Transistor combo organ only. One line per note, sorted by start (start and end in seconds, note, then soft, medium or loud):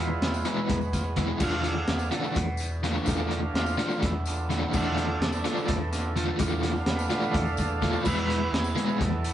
0.00 1.37 G#3 soft
0.00 1.38 B3 soft
0.00 0.46 E4 medium
0.00 0.48 F4 loud
0.47 0.69 E4 medium
0.93 1.04 F4 medium
1.16 1.27 E4 medium
1.42 2.09 A3 soft
1.42 2.09 D4 soft
1.42 1.66 F4 medium
1.42 2.10 F5 medium
1.66 2.10 G#4 medium
2.15 2.36 A4 medium
3.08 3.76 A3 medium
3.08 3.76 D4 soft
3.08 3.76 F5 medium
3.56 4.00 F4 loud
4.03 4.76 E4 loud
4.27 4.48 A3 soft
4.27 4.48 D4 soft
4.27 4.48 F4 medium
4.75 5.91 A3 medium
4.75 5.22 D4 soft
4.75 5.24 F4 loud
4.75 6.37 A4 medium
5.24 5.71 D4 medium
5.68 6.17 E4 medium
5.92 6.13 A3 medium
5.92 6.14 D4 soft
5.92 6.14 F4 medium
6.17 6.27 F4 medium
6.39 8.01 A3 medium
6.39 8.02 D4 soft
6.39 8.02 F5 medium
6.86 7.36 B4 medium
7.31 7.99 A4 loud
7.97 8.05 C5 medium
8.03 9.33 E3 medium
8.03 8.75 B3 soft
8.03 8.76 E4 medium
8.03 8.48 B4 medium
8.51 9.01 G#4 medium
8.76 8.98 G#3 soft
8.76 8.98 B3 soft
8.76 8.98 E4 medium
8.97 9.33 A4 loud